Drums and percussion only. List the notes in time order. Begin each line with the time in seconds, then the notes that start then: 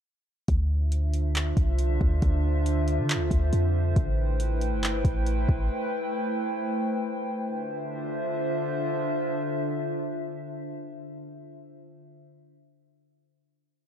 0.48 kick, closed hi-hat
0.92 closed hi-hat
1.14 closed hi-hat
1.35 clap, closed hi-hat
1.57 kick, closed hi-hat
1.79 closed hi-hat
2.01 kick
2.22 kick, closed hi-hat
2.66 closed hi-hat
2.88 closed hi-hat
3.10 clap, closed hi-hat
3.31 kick, closed hi-hat
3.53 closed hi-hat
3.96 kick, closed hi-hat
4.40 closed hi-hat
4.61 closed hi-hat
4.83 clap, closed hi-hat
5.05 kick, closed hi-hat
5.27 closed hi-hat
5.49 kick